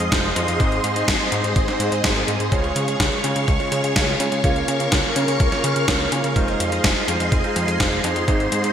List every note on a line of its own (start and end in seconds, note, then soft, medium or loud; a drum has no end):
0.00 0.10 F2 medium
0.00 4.40 G#4 medium
0.00 2.48 D#5 medium
0.00 0.56 F5 medium
0.00 2.48 C6 medium
0.12 0.32 F1 medium
0.12 0.30 G#3 medium
0.12 0.30 D#4 medium
0.12 0.30 F4 medium
0.12 0.30 C5 loud
0.12 kick loud
0.12 snare loud
0.12 closed hi-hat soft
0.24 closed hi-hat soft
0.36 0.46 F2 loud
0.36 0.57 G#2 medium
0.36 0.57 G#3 medium
0.36 0.57 D#4 medium
0.36 0.57 F4 medium
0.36 0.57 C5 medium
0.36 closed hi-hat medium
0.48 0.58 F2 medium
0.48 closed hi-hat soft
0.60 0.80 G#1 medium
0.60 0.93 G#2 medium
0.60 0.93 G#3 medium
0.60 0.93 C4 medium
0.60 0.93 D#4 medium
0.60 2.50 C5 medium
0.60 0.93 C5 loud
0.60 kick loud
0.60 closed hi-hat soft
0.72 closed hi-hat soft
0.84 1.04 G#2 medium
0.84 closed hi-hat medium
0.96 1.29 G#2 medium
0.96 1.29 G#3 medium
0.96 1.29 C4 medium
0.96 1.29 D#4 medium
0.96 1.29 C5 medium
0.96 closed hi-hat soft
1.08 1.18 G#1 loud
1.08 kick loud
1.08 snare loud
1.08 closed hi-hat soft
1.20 closed hi-hat soft
1.32 1.65 G#2 medium
1.32 1.42 G#2 loud
1.32 1.65 G#3 medium
1.32 1.65 C4 medium
1.32 1.65 D#4 medium
1.32 1.65 C5 medium
1.32 closed hi-hat medium
1.44 1.54 G#2 medium
1.44 closed hi-hat soft
1.56 1.66 G#1 medium
1.56 kick loud
1.56 closed hi-hat soft
1.68 2.01 G#2 medium
1.68 2.01 G#3 medium
1.68 2.01 C4 medium
1.68 2.01 D#4 medium
1.68 2.01 C5 medium
1.68 snare soft
1.68 closed hi-hat soft
1.80 1.90 G#2 loud
1.80 closed hi-hat medium
1.92 2.02 G#2 medium
1.92 closed hi-hat soft
2.04 2.24 G#1 loud
2.04 2.13 G#2 medium
2.04 2.13 G#3 medium
2.04 2.13 C4 medium
2.04 2.13 D#4 medium
2.04 2.13 D#5 medium
2.04 kick loud
2.04 snare loud
2.04 closed hi-hat soft
2.16 2.49 G#2 medium
2.16 2.49 G#3 medium
2.16 2.49 C4 medium
2.16 2.49 D#4 medium
2.16 2.49 A#4 medium
2.16 closed hi-hat soft
2.28 2.38 G#2 loud
2.28 closed hi-hat medium
2.40 2.50 G#2 medium
2.40 closed hi-hat soft
2.52 2.72 C#2 medium
2.52 2.85 C#3 medium
2.52 2.85 G#3 medium
2.52 2.85 C#4 medium
2.52 2.85 F4 medium
2.52 2.85 C#5 loud
2.52 6.32 C#5 medium
2.52 8.24 F5 medium
2.52 4.42 C#6 medium
2.52 kick loud
2.52 closed hi-hat soft
2.64 closed hi-hat soft
2.76 2.96 C#3 medium
2.76 closed hi-hat medium
2.88 3.21 C#3 medium
2.88 3.21 G#3 medium
2.88 3.21 C#4 medium
2.88 3.21 F4 medium
2.88 3.21 C#5 medium
2.88 closed hi-hat soft
3.00 3.10 C#2 loud
3.00 kick loud
3.00 snare loud
3.00 closed hi-hat soft
3.12 closed hi-hat soft
3.24 3.57 C#3 medium
3.24 3.34 C#3 medium
3.24 3.57 G#3 medium
3.24 3.57 C#4 medium
3.24 3.57 F4 medium
3.24 3.57 C#5 medium
3.24 closed hi-hat medium
3.36 3.46 C#3 medium
3.36 closed hi-hat soft
3.48 3.58 C#2 loud
3.48 kick loud
3.48 closed hi-hat soft
3.60 3.93 C#3 medium
3.60 3.93 G#3 medium
3.60 3.93 C#4 medium
3.60 3.93 F4 medium
3.60 3.93 C#5 loud
3.60 closed hi-hat soft
3.72 3.82 C#3 loud
3.72 closed hi-hat medium
3.84 3.94 C#3 medium
3.84 closed hi-hat soft
3.96 4.16 C#2 medium
3.96 4.14 C#3 medium
3.96 4.14 G#3 medium
3.96 4.14 C#4 medium
3.96 4.14 F4 medium
3.96 4.14 C#5 medium
3.96 kick loud
3.96 snare loud
3.96 closed hi-hat soft
4.08 closed hi-hat soft
4.20 4.30 C#3 loud
4.20 4.41 G#3 medium
4.20 4.41 C#4 medium
4.20 4.41 F4 medium
4.20 4.41 C#5 medium
4.20 closed hi-hat medium
4.32 4.42 C#3 medium
4.32 closed hi-hat soft
4.44 4.64 C#2 loud
4.44 4.77 C#3 medium
4.44 4.77 A#3 medium
4.44 4.77 C#4 medium
4.44 4.77 F4 medium
4.44 6.34 A#4 medium
4.44 4.77 C#5 loud
4.44 6.34 C#6 medium
4.44 kick loud
4.44 closed hi-hat soft
4.56 closed hi-hat soft
4.68 4.88 C#3 medium
4.68 closed hi-hat medium
4.80 5.13 C#3 medium
4.80 5.13 A#3 medium
4.80 5.13 C#4 medium
4.80 5.13 F4 medium
4.80 5.13 C#5 medium
4.80 closed hi-hat soft
4.92 5.02 C#2 loud
4.92 kick loud
4.92 snare loud
4.92 closed hi-hat soft
5.04 closed hi-hat soft
5.16 5.49 C#3 medium
5.16 5.26 C#3 loud
5.16 5.49 A#3 medium
5.16 5.49 C#4 medium
5.16 5.49 F4 medium
5.16 5.49 C#5 medium
5.16 closed hi-hat medium
5.28 5.38 C#3 medium
5.28 closed hi-hat medium
5.40 5.50 C#2 loud
5.40 kick loud
5.40 closed hi-hat soft
5.52 5.85 C#3 medium
5.52 5.85 A#3 medium
5.52 5.85 C#4 medium
5.52 5.85 F4 medium
5.52 5.85 C#5 loud
5.52 snare soft
5.52 closed hi-hat soft
5.64 5.74 C#3 loud
5.64 closed hi-hat medium
5.76 5.86 C#3 medium
5.76 closed hi-hat medium
5.88 6.08 C#2 medium
5.88 6.06 C#3 medium
5.88 6.06 A#3 medium
5.88 6.06 C#4 medium
5.88 6.06 F4 medium
5.88 6.06 C#5 medium
5.88 kick loud
5.88 snare loud
5.88 closed hi-hat soft
6.00 closed hi-hat soft
6.12 6.22 C#3 loud
6.12 6.33 A#3 medium
6.12 6.33 C#4 medium
6.12 6.33 F4 medium
6.12 6.33 C#5 medium
6.12 closed hi-hat medium
6.24 6.34 C#3 medium
6.24 closed hi-hat soft
6.36 6.56 F1 medium
6.36 6.69 G#3 medium
6.36 6.69 D#4 medium
6.36 6.69 F4 medium
6.36 8.26 G#4 medium
6.36 6.69 C5 loud
6.36 8.26 D#5 medium
6.36 8.73 C6 medium
6.36 kick loud
6.36 closed hi-hat medium
6.48 closed hi-hat soft
6.60 6.80 F2 medium
6.60 closed hi-hat medium
6.72 7.05 G#3 medium
6.72 7.05 D#4 medium
6.72 7.05 F4 medium
6.72 7.05 C5 medium
6.72 closed hi-hat medium
6.84 6.94 F1 loud
6.84 kick loud
6.84 snare loud
6.84 closed hi-hat medium
6.96 closed hi-hat soft
7.08 7.18 F2 loud
7.08 7.41 G#3 medium
7.08 7.41 D#4 medium
7.08 7.41 F4 medium
7.08 7.41 C5 medium
7.08 closed hi-hat medium
7.20 7.30 F2 medium
7.20 closed hi-hat medium
7.32 7.42 F1 loud
7.32 kick loud
7.32 closed hi-hat medium
7.44 7.77 G#3 medium
7.44 7.77 D#4 medium
7.44 7.77 F4 medium
7.44 7.77 C5 medium
7.44 closed hi-hat soft
7.56 7.66 F2 loud
7.56 closed hi-hat medium
7.68 7.78 F2 medium
7.68 closed hi-hat medium
7.80 8.00 F1 medium
7.80 7.98 G#3 medium
7.80 7.98 D#4 medium
7.80 7.98 F4 medium
7.80 7.98 C5 loud
7.80 kick loud
7.80 snare loud
7.80 closed hi-hat medium
7.92 closed hi-hat soft
8.04 8.14 F2 loud
8.04 8.25 G#2 medium
8.04 8.25 G#3 medium
8.04 8.25 D#4 medium
8.04 8.25 F4 medium
8.04 8.25 C5 medium
8.04 closed hi-hat medium
8.16 8.26 F2 medium
8.16 closed hi-hat medium
8.28 8.48 G#1 medium
8.28 8.61 G#2 medium
8.28 8.61 G#3 medium
8.28 8.61 C4 medium
8.28 8.61 D#4 medium
8.28 8.73 G#4 medium
8.28 8.61 C5 loud
8.28 8.73 C5 medium
8.28 8.73 D#5 medium
8.28 kick loud
8.28 closed hi-hat medium
8.40 closed hi-hat soft
8.52 8.72 G#2 medium
8.52 closed hi-hat medium
8.64 8.73 G#2 medium
8.64 8.73 G#3 medium
8.64 8.73 C4 medium
8.64 8.73 D#4 medium
8.64 8.73 C5 medium
8.64 closed hi-hat medium